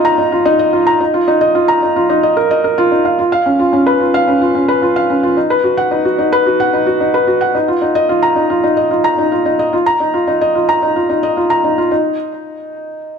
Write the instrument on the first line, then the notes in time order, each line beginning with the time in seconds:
felt piano
Already playing: D#4 F4 D#5 A#5
0.05 A#5
0.18 D#4
0.32 F4
0.46 D#4
0.59 D#5
0.73 F4
0.87 A#5
1.00 D#4
1.14 F4
1.28 D#4
1.41 D#5
1.55 F4
1.68 A#5
1.82 D#4
1.96 F4
2.10 D#4
2.23 D#5
2.37 A#4
2.51 D#5
2.64 A#4
2.78 F4
2.92 D#4
3.05 F5
3.19 F4
3.32 F5
3.46 C#4
3.59 F4
3.73 C#4
3.87 B4
4.00 F4
4.14 F5
4.28 C#4
4.41 F4
4.55 C#4
4.68 B4
4.82 F4
4.96 F5
5.10 C#4
5.23 F4
5.37 D#4
5.50 B4
5.64 F#4
5.77 F#5
5.91 D#4
6.05 F#4
6.18 D#4
6.32 B4
6.46 F#4
6.60 F#5
6.73 D#4
6.87 F#4
7.00 D#4
7.14 B4
7.27 F#4
7.41 F#5
7.55 D#4
7.68 F4
7.82 D#4
7.95 D#5
8.09 F4
8.23 A#5
8.36 D#4
8.50 F4
8.64 D#4
8.77 D#5
8.91 F4
9.04 A#5
9.18 D#4
9.32 F4
9.46 D#4
9.59 D#5
9.73 F4
9.86 A#5
10.00 D#4
10.14 F4
10.28 D#4
10.41 D#5
10.55 F4
10.69 A#5
10.82 D#4
10.96 F4
11.09 D#4
11.23 D#5
11.37 F4
11.50 A#5
11.64 D#4
11.78 F4
11.91 D#4